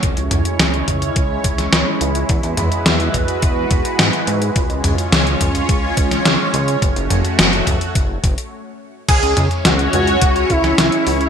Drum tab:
CC |----------------|----------------|----------------|----------------|
HH |xxxxxxxxx-xxx-xx|xxxxxxxxx-xxxxxx|xxxxxxxxx-xxx-xx|xxxxxxxxx-xx----|
SD |----o------oo---|----o-------o---|----o------oo---|----o-----------|
T2 |--o---o---------|--o---o---------|--o---o---------|--o---o---------|
BD |o-----o-o-o-----|o-----o-o-o-----|o-----o-o-o-----|o-----o-o-o-----|

CC |x---------------|
HH |xxxxxxxxxxxxxxox|
SD |----o------oo---|
T2 |--o---o---------|
BD |o-------o-o-----|